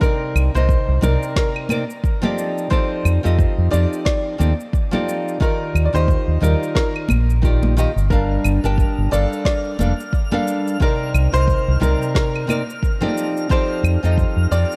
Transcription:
0.01 nylon-string guitar C3 C4 D#4 A#4 D5, grand piano A#4, kick, shaker
0.35 fingered electric bass C2, claves, shaker
0.55 fingered electric bass C2, nylon-string guitar C3 C4 D#4 A#4 D#5, grand piano C5, shaker
0.69 kick, shaker
0.88 fingered electric bass C2
1.01 fingered electric bass C2, nylon-string guitar C3 C4 D#4 A#4 D5, grand piano A#4, low conga, shaker
1.23 shaker
1.36 grand piano A#4, kick, snare, shaker
1.56 claves
1.69 nylon-string guitar C3 C4 D#4 A#4 D5, high conga, claves, shaker
1.90 shaker
2.04 kick, shaker
2.22 nylon-string guitar F3 C4 D#4 G4 A4 D5, high conga, low conga
2.38 shaker
2.58 shaker
2.70 nylon-string guitar F3 C4 D#4 G4 A4 D5, grand piano C5, kick, shaker
3.05 fingered electric bass F2, claves, shaker
3.23 fingered electric bass F2, nylon-string guitar F3 C4 D#4 G4 A4 D#5, shaker
3.39 kick, shaker
3.58 fingered electric bass F2
3.71 fingered electric bass F2, nylon-string guitar F3 C4 D#4 G4 A4 D5, grand piano D5, shaker
3.93 shaker
4.05 grand piano D5, kick, snare, shaker
4.38 fingered electric bass D#2, nylon-string guitar F3 C4 D#4 G4 A4 D5, high conga, shaker
4.60 shaker
4.73 kick, shaker
4.91 nylon-string guitar F3 C4 D#4 G4 A4 D5, high conga, low conga
5.09 shaker
5.28 shaker
5.40 nylon-string guitar D#3 D#4 F4 G4 D5, grand piano A#4, kick, shaker
5.75 fingered electric bass D#2, claves, shaker
5.85 grand piano D5
5.93 fingered electric bass D#2, nylon-string guitar D#3 D#4 F4 G4 D#5, grand piano C5, shaker
6.08 kick, shaker
6.28 fingered electric bass D#2
6.40 fingered electric bass D#2, nylon-string guitar D#3 D#4 F4 G4 D5, grand piano A#4, low conga, shaker
6.63 shaker
6.75 grand piano A#4, kick, snare, shaker
6.96 claves
7.09 fingered electric bass A#1, high conga, claves, shaker
7.30 shaker
7.42 nylon-string guitar D#3 D#4 F4 G4 D5, kick, shaker
7.63 high conga, low conga
7.77 nylon-string guitar D#3 D#4 F4 G4 D#5, shaker
7.96 fingered electric bass G1, shaker
8.10 nylon-string guitar G3 D4 A#4 F5 A5, grand piano A#4, synth texture F6, kick, shaker
8.44 fingered electric bass G1, claves, shaker
8.64 fingered electric bass G1, nylon-string guitar G3 D4 A#4 G5 A5, shaker
8.78 kick, shaker
8.98 fingered electric bass G1
9.11 fingered electric bass G1, nylon-string guitar G3 D4 A4 A#4 F5, grand piano D5, shaker
9.33 shaker
9.45 grand piano D5, kick, snare, shaker
9.79 fingered electric bass F1, nylon-string guitar G3 D4 A4 A#4 F5, high conga, shaker
10.00 shaker
10.13 kick, shaker
10.31 nylon-string guitar G3 D4 A4 A#4 F5, high conga, low conga
10.48 shaker
10.68 shaker
10.80 nylon-string guitar C3 C4 D#4 A#4 D5, grand piano A#4, kick, shaker
11.14 fingered electric bass C2, claves, shaker
11.32 fingered electric bass C2, nylon-string guitar C3 C4 D#4 A#4 D#5, grand piano C5, shaker
11.48 kick, shaker
11.68 fingered electric bass C2
11.80 fingered electric bass C2, nylon-string guitar C3 C4 D#4 A#4 D5, grand piano A#4, low conga, shaker
12.02 shaker
12.15 grand piano A#4, kick, snare, shaker
12.36 claves
12.47 nylon-string guitar C3 C4 D#4 A#4 D5, high conga, claves, shaker
12.70 shaker
12.83 kick, shaker
13.01 nylon-string guitar F3 C4 D#4 G4 A4 D5, high conga, low conga
13.18 shaker
13.37 shaker
13.49 nylon-string guitar F3 C4 D#4 G4 A4 D5, grand piano C5, kick, shaker
13.83 fingered electric bass F2, claves, shaker
14.03 fingered electric bass F2, nylon-string guitar F3 C4 D#4 G4 A4 D#5, shaker
14.18 kick, shaker
14.37 fingered electric bass F2
14.51 fingered electric bass F2, nylon-string guitar F3 C4 D#4 G4 A4 D5, grand piano D5, shaker
14.72 shaker

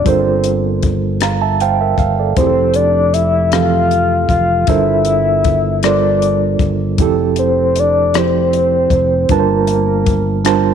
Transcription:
0.04 fingered electric bass G1, reed electric piano G3 D4 F4 A4 A#4 C5, soft synth lead C5, kick, closed hi-hat
0.44 closed hi-hat
0.83 kick, closed hi-hat
1.21 reed electric piano F5 A#5, cross-stick, closed hi-hat
1.42 reed electric piano E5 A5
1.60 reed electric piano C5 F5 G5, closed hi-hat
1.81 reed electric piano A#4 E5
1.98 fingered electric bass G1, reed electric piano F5, kick, closed hi-hat
2.19 reed electric piano A4 D5
2.37 fingered electric bass F1, reed electric piano F3 C4 E4 G4 G#4, soft synth lead C5, kick, closed hi-hat
2.46 reed electric piano A4
2.74 soft synth lead D5, closed hi-hat
3.13 soft synth lead E5, closed hi-hat
3.52 reed electric piano E3 F3 C4 G4 A4, soft synth lead F5, cross-stick, closed hi-hat
3.91 closed hi-hat
4.29 fingered electric bass F1, soft synth lead F5, kick, closed hi-hat
4.67 fingered electric bass G1, reed electric piano G3 D4 F4 A4 A#4 C5, soft synth lead E5, kick, closed hi-hat
5.05 closed hi-hat
5.44 kick, closed hi-hat
5.83 reed electric piano G3 D4 F4 A4 A#4 C5, soft synth lead D5, cross-stick, closed hi-hat
6.22 closed hi-hat
6.59 fingered electric bass G1, kick, closed hi-hat
6.98 fingered electric bass F1, reed electric piano F3 C4 E4 G4 A4, kick, closed hi-hat
7.36 soft synth lead C5, closed hi-hat
7.76 soft synth lead D5, closed hi-hat
8.14 reed electric piano F3 C4 E4 G4 C5, soft synth lead C5, cross-stick, closed hi-hat
8.53 closed hi-hat
8.90 fingered electric bass F1, kick, closed hi-hat
9.29 fingered electric bass G1, reed electric piano G3 D4 F4 A#4 A5, soft synth lead A#4, kick, closed hi-hat
9.33 reed electric piano B4
9.39 reed electric piano C5
9.67 closed hi-hat
10.07 kick, closed hi-hat
10.44 reed electric piano G3 D4 F4 A#4 C5 A5, cross-stick, closed hi-hat

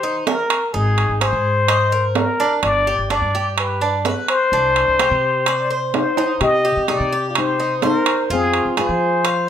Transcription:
Already playing: upright bass D#3, muted trumpet C5
0.03 cuban tres D#4
0.26 muted trumpet A#4, cuban tres A#4, high timbale, low timbale
0.50 high timbale
0.73 upright bass G#1, cuban tres D#4, muted trumpet G#4
0.98 high timbale
1.09 upright bass G#1
1.21 cuban tres G#4, muted trumpet C5, high timbale, low timbale
1.33 upright bass G#2
1.68 cuban tres D#5, high timbale
1.92 cuban tres A#4
2.15 muted trumpet A#4, high timbale, low timbale
2.40 cuban tres D4
2.63 upright bass G1, muted trumpet D5, high timbale
2.87 cuban tres G4
2.99 upright bass G1
3.10 cuban tres D4, muted trumpet D5, high timbale, low timbale
3.22 upright bass G2
3.35 cuban tres G4
3.58 muted trumpet B4, high timbale
3.81 cuban tres D4
4.05 cuban tres B4, high timbale, low timbale
4.28 muted trumpet C5, high timbale
4.52 upright bass C2, cuban tres D4
4.76 high timbale
4.88 upright bass C2
4.99 cuban tres G4, high timbale, low timbale
5.11 upright bass C3
5.46 cuban tres D5, high timbale
5.70 cuban tres C5
5.94 nylon-string guitar D#4, muted trumpet C5, high timbale, low timbale
6.17 cuban tres D#4, high timbale
6.41 upright bass C3, nylon-string guitar G4, muted trumpet D#5, high timbale
6.65 cuban tres G4
6.77 upright bass C3
6.88 cuban tres D#4, nylon-string guitar G4, muted trumpet D5, high timbale, low timbale
7.00 upright bass C3
7.12 cuban tres G4
7.29 nylon-string guitar F4, muted trumpet D5
7.35 nylon-string guitar D#4, muted trumpet C5, high timbale
7.60 cuban tres D#4
7.82 nylon-string guitar D#4, muted trumpet A#4, cuban tres C5, high timbale, low timbale
8.06 high timbale
8.30 upright bass F2, nylon-string guitar C4, cuban tres F4, muted trumpet G#4
8.54 high timbale
8.65 upright bass F2
8.77 nylon-string guitar F4, cuban tres G#4, muted trumpet C5, high timbale, low timbale
8.89 upright bass F3
9.25 cuban tres F5, high timbale

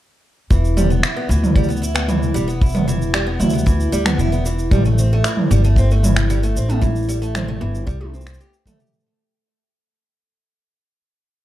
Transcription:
0.50 upright bass E1, steel-string acoustic guitar E3, kick, shaker
0.65 shaker
0.77 steel-string acoustic guitar G3, mid tom, shaker
0.90 steel-string acoustic guitar B3, shaker
1.03 steel-string acoustic guitar E4, finger snap, shaker
1.17 steel-string acoustic guitar B3
1.29 upright bass D2, steel-string acoustic guitar E3, shaker
1.44 mid tom, shaker
1.56 steel-string acoustic guitar G3, kick, shaker
1.64 shaker
1.69 steel-string acoustic guitar B3, shaker
1.77 shaker
1.82 steel-string acoustic guitar E4, shaker
1.95 steel-string acoustic guitar B3, finger snap, shaker
2.08 steel-string acoustic guitar E3, mid tom, shaker
2.23 shaker
2.34 upright bass E1, steel-string acoustic guitar G3, shaker
2.48 steel-string acoustic guitar B3, shaker
2.61 steel-string acoustic guitar E4, kick, shaker
2.66 shaker
2.69 shaker
2.72 steel-string acoustic guitar B3, mid tom, shaker
2.76 shaker
2.88 steel-string acoustic guitar E3, shaker
3.02 shaker
3.14 steel-string acoustic guitar G3, finger snap, shaker
3.27 steel-string acoustic guitar B3
3.40 upright bass D2, steel-string acoustic guitar E4, mid tom, shaker
3.50 steel-string acoustic guitar B3, shaker
3.54 shaker
3.58 shaker
3.66 steel-string acoustic guitar E3, kick, shaker
3.80 shaker
3.92 upright bass D2, steel-string acoustic guitar G3, shaker
4.06 steel-string acoustic guitar B3, finger snap, mid tom, shaker
4.18 upright bass E1, steel-string acoustic guitar E4, shaker
4.32 steel-string acoustic guitar B3, shaker
4.46 steel-string acoustic guitar E3, shaker
4.59 shaker
4.71 upright bass A1, steel-string acoustic guitar G3, kick, mid tom, shaker
4.85 steel-string acoustic guitar A3, shaker
4.98 steel-string acoustic guitar C4, shaker
5.13 steel-string acoustic guitar A3
5.24 steel-string acoustic guitar E3, finger snap, shaker
5.37 mid tom
5.51 upright bass G1, steel-string acoustic guitar G3, shaker
5.64 steel-string acoustic guitar A3, shaker
5.76 steel-string acoustic guitar C4, kick, shaker
5.91 steel-string acoustic guitar A3, shaker
6.03 steel-string acoustic guitar E3, mid tom, shaker
6.16 finger snap, shaker
6.30 steel-string acoustic guitar G3, shaker
6.43 steel-string acoustic guitar A3, shaker
6.56 upright bass A1, steel-string acoustic guitar C4, shaker
6.69 steel-string acoustic guitar A3, mid tom, shaker
6.81 steel-string acoustic guitar E3, kick, shaker
6.96 shaker
6.99 shaker
7.02 shaker
7.06 steel-string acoustic guitar G3, shaker
7.09 shaker
7.13 shaker
7.19 steel-string acoustic guitar A3, shaker
7.23 shaker
7.35 steel-string acoustic guitar C4, finger snap, mid tom, shaker
7.48 steel-string acoustic guitar A3
7.61 upright bass G1, steel-string acoustic guitar E3
7.75 shaker
7.87 upright bass C2, steel-string acoustic guitar G3, kick, shaker
8.01 steel-string acoustic guitar A3, mid tom
8.14 steel-string acoustic guitar C4, shaker
8.21 shaker
8.27 steel-string acoustic guitar C4, finger snap, shaker
8.34 shaker
8.41 steel-string acoustic guitar G4, shaker
8.54 shaker
8.66 steel-string acoustic guitar A3, kick, mid tom, shaker
8.80 steel-string acoustic guitar G4, shaker
8.87 shaker
8.93 shaker
9.00 shaker

